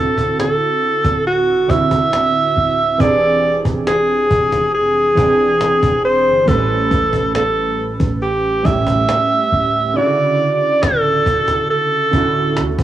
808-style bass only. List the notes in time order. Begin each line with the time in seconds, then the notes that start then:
Already playing: D1
1.05 D1
1.48 E1
1.70 D1
2.57 D1
3.00 E1
3.65 E1
4.31 E1
4.74 F1
5.17 E1
5.83 E1
6.26 G1
6.48 A1
6.91 A1
8.00 A1
8.65 A1
9.52 D1
10.83 D1
11.26 D1
12.13 D1
12.57 D2
12.79 D1